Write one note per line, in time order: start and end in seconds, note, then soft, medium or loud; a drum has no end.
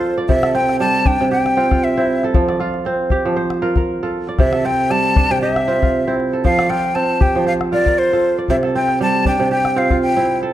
0.00 0.34 F3 medium
0.00 0.54 C4 medium
0.00 1.43 F4 medium
0.00 0.43 A4 medium
0.00 0.18 C5 medium
0.00 0.45 C5 medium
0.18 1.28 D5 medium
0.18 calabash click soft
0.28 1.19 C3 medium
0.28 0.57 E5 medium
0.28 calabash thump medium
0.43 1.75 A4 medium
0.43 calabash click medium
0.55 1.56 C4 medium
0.55 0.79 G5 medium
0.55 calabash click soft
0.69 calabash click soft
0.80 2.40 G3 medium
0.80 1.08 A5 medium
0.80 calabash click soft
1.05 2.74 D4 medium
1.05 1.31 G5 medium
1.05 calabash thump medium
1.20 2.40 C3 medium
1.31 2.73 G4 medium
1.31 1.85 G5 medium
1.31 calabash click soft
1.46 calabash click soft
1.57 1.97 C4 medium
1.57 1.71 F4 medium
1.57 calabash click soft
1.71 2.60 F4 medium
1.71 calabash thump soft
1.71 calabash click soft
1.84 2.24 E5 medium
1.97 2.86 C4 medium
1.97 2.40 E4 medium
2.23 3.56 A4 medium
2.23 calabash click soft
2.34 3.24 F3 medium
2.34 calabash thump medium
2.49 3.60 D5 medium
2.49 calabash click soft
2.60 3.62 F4 medium
2.60 calabash click soft
2.74 calabash click soft
2.85 4.64 C4 medium
2.85 calabash click soft
3.10 4.53 G4 medium
3.10 calabash thump medium
3.25 4.45 F3 medium
3.36 4.55 C5 medium
3.36 calabash click soft
3.50 calabash click soft
3.62 4.02 F4 medium
3.62 3.76 A#4 medium
3.62 calabash click soft
3.76 4.60 A#4 medium
3.76 calabash thump medium
3.76 calabash click soft
4.03 5.54 F4 medium
4.03 4.53 A4 medium
4.27 5.39 D5 medium
4.27 calabash click soft
4.39 5.29 C3 medium
4.39 4.67 E5 medium
4.39 calabash thump medium
4.39 calabash click soft
4.53 5.86 A4 medium
4.53 calabash click medium
4.65 5.67 C4 medium
4.65 4.92 G5 loud
4.90 6.50 G3 medium
4.90 5.33 A5 medium
4.90 calabash click soft
5.16 6.84 D4 medium
5.16 calabash thump medium
5.31 6.50 C3 medium
5.31 5.41 G5 medium
5.42 6.84 G4 medium
5.42 6.15 E5 medium
5.56 calabash click soft
5.68 6.07 C4 medium
5.68 5.82 F4 medium
5.82 6.69 F4 medium
5.82 calabash thump medium
5.82 calabash click soft
6.08 6.95 C4 medium
6.08 6.51 E4 medium
6.20 calabash click soft
6.33 7.65 A4 medium
6.44 7.34 F3 medium
6.44 6.71 F5 medium
6.44 calabash thump medium
6.58 7.69 D5 medium
6.58 calabash click medium
6.69 7.72 F4 medium
6.69 6.97 G5 medium
6.69 calabash click soft
6.85 calabash click soft
6.95 8.75 C4 medium
6.95 7.23 A5 medium
6.95 calabash click soft
7.20 8.62 G4 medium
7.20 7.47 G5 medium
7.20 calabash thump medium
7.36 8.55 F3 medium
7.46 8.65 C5 medium
7.46 7.53 F5 medium
7.46 calabash click soft
7.61 calabash click soft
7.72 8.12 F4 medium
7.72 7.87 A#4 medium
7.72 8.00 D5 medium
7.72 calabash click soft
7.86 8.70 A#4 medium
7.86 calabash thump soft
7.86 calabash click soft
7.98 8.38 C5 medium
8.13 9.64 F4 medium
8.13 8.64 A4 medium
8.38 9.49 D5 medium
8.38 calabash click soft
8.48 9.38 C3 medium
8.48 8.56 E5 medium
8.48 calabash thump soft
8.63 9.96 A4 medium
8.63 calabash click soft
8.75 9.76 C4 medium
8.75 8.99 G5 medium
8.89 calabash click soft
9.00 10.53 G3 medium
9.00 9.25 A5 medium
9.00 calabash click soft
9.25 10.53 D4 medium
9.25 9.50 G5 medium
9.25 calabash thump medium
9.39 10.53 C3 medium
9.51 10.53 G4 medium
9.51 9.79 G5 medium
9.51 calabash click soft
9.65 calabash click soft
9.76 10.16 C4 medium
9.76 9.91 F4 medium
9.76 10.01 F5 medium
9.76 calabash click soft
9.90 10.53 F4 medium
9.90 calabash thump soft
9.90 calabash click soft
10.02 10.39 G5 loud
10.17 10.53 C4 medium
10.17 10.53 E4 medium
10.42 10.53 A4 medium
10.42 calabash click soft